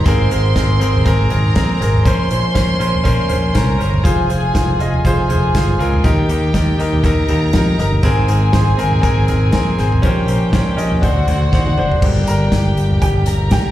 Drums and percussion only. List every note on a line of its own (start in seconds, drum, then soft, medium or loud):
0.06 kick loud
0.06 closed hi-hat loud
0.31 closed hi-hat medium
0.56 kick loud
0.56 snare loud
0.56 closed hi-hat medium
0.81 closed hi-hat medium
0.95 floor tom medium
1.06 kick loud
1.06 closed hi-hat medium
1.30 closed hi-hat medium
1.30 floor tom medium
1.55 kick loud
1.55 snare loud
1.55 closed hi-hat medium
1.81 snare soft
1.81 closed hi-hat medium
1.95 floor tom medium
2.05 kick loud
2.05 closed hi-hat loud
2.30 closed hi-hat medium
2.55 kick loud
2.55 snare loud
2.55 closed hi-hat medium
2.81 closed hi-hat medium
2.94 floor tom medium
3.05 kick loud
3.05 closed hi-hat medium
3.29 closed hi-hat medium
3.29 floor tom medium
3.55 kick loud
3.55 snare loud
3.55 closed hi-hat loud
3.80 closed hi-hat medium
3.94 floor tom medium
4.05 kick loud
4.05 closed hi-hat medium
4.30 closed hi-hat medium
4.55 kick loud
4.55 snare medium
4.55 closed hi-hat medium
4.80 closed hi-hat medium
4.94 floor tom medium
5.05 kick loud
5.05 closed hi-hat medium
5.30 closed hi-hat medium
5.30 floor tom medium
5.54 kick loud
5.54 snare loud
5.54 closed hi-hat loud
5.80 closed hi-hat medium
5.94 floor tom medium
6.04 kick loud
6.04 closed hi-hat loud
6.29 closed hi-hat medium
6.54 kick loud
6.54 snare loud
6.54 closed hi-hat loud
6.79 closed hi-hat medium
6.93 floor tom medium
7.04 kick loud
7.04 closed hi-hat medium
7.28 closed hi-hat medium
7.28 floor tom medium
7.53 kick loud
7.53 snare loud
7.53 closed hi-hat medium
7.79 snare soft
7.79 closed hi-hat medium
7.92 floor tom medium
8.03 kick loud
8.03 closed hi-hat loud
8.28 closed hi-hat medium
8.53 kick loud
8.53 snare loud
8.53 closed hi-hat medium
8.79 closed hi-hat medium
8.92 floor tom medium
9.03 kick loud
9.03 closed hi-hat medium
9.28 closed hi-hat medium
9.28 floor tom medium
9.52 kick loud
9.52 snare loud
9.52 closed hi-hat loud
9.78 snare soft
9.78 closed hi-hat medium
9.92 floor tom medium
10.03 kick loud
10.03 closed hi-hat loud
10.28 closed hi-hat medium
10.53 kick loud
10.53 snare loud
10.53 closed hi-hat medium
10.78 closed hi-hat medium
10.92 floor tom medium
11.03 kick loud
11.03 closed hi-hat medium
11.28 closed hi-hat medium
11.28 floor tom medium
11.53 kick loud
11.53 snare medium
11.67 high tom medium
11.78 mid tom medium
11.91 floor tom medium
12.02 kick loud
12.02 crash loud
12.27 closed hi-hat medium
12.52 kick loud
12.52 snare loud
12.52 closed hi-hat medium
12.77 closed hi-hat medium
12.91 floor tom medium
13.02 kick loud
13.02 closed hi-hat medium
13.26 closed hi-hat medium
13.26 floor tom medium
13.51 kick loud
13.51 snare loud
13.51 closed hi-hat loud